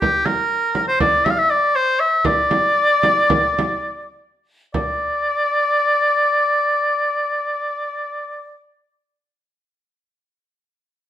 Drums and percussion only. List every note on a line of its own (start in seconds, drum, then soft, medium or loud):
0.02 frame drum medium
0.26 frame drum medium
0.75 frame drum medium
1.00 frame drum medium
1.26 frame drum medium
2.25 frame drum medium
2.51 frame drum medium
3.03 frame drum medium
3.30 frame drum medium
3.59 frame drum medium
4.74 frame drum medium